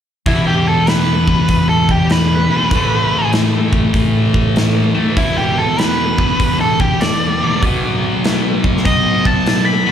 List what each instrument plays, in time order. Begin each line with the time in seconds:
0.26 distorted electric guitar E2 B2 E3, lead electric guitar E4, kick, open hi-hat
0.47 lead electric guitar G4
0.67 lead electric guitar A4
0.87 lead electric guitar B4, snare, open hi-hat
1.28 kick
1.48 kick, open hi-hat
1.69 lead electric guitar A4
1.89 lead electric guitar G4, kick
2.10 lead electric guitar B4, snare, open hi-hat
2.51 distorted electric guitar E2 B2 E3
2.71 distorted electric guitar A2 E3 A3, kick, open hi-hat
3.33 snare, open hi-hat
3.73 kick
3.94 kick, open hi-hat
4.34 kick
4.56 snare, open hi-hat
4.95 distorted electric guitar A2 E3 A3
5.16 distorted electric guitar E2 B2 E3, lead electric guitar E4, kick, open hi-hat
5.38 lead electric guitar G4
5.58 lead electric guitar A4
5.79 lead electric guitar B4, snare, open hi-hat
6.18 kick
6.40 kick, open hi-hat
6.61 lead electric guitar A4
6.80 lead electric guitar G4, kick
7.01 lead electric guitar D5, snare, open hi-hat
7.41 distorted electric guitar E2 B2 E3
7.63 distorted electric guitar B2 F#3 B3, kick, open hi-hat
8.24 snare, open hi-hat
8.64 kick
8.77 snare
8.85 lead electric guitar D#5, kick, open hi-hat
9.25 lead electric guitar A5, kick
9.46 snare, open hi-hat
9.65 lead electric guitar B5
9.86 distorted electric guitar F#3 B3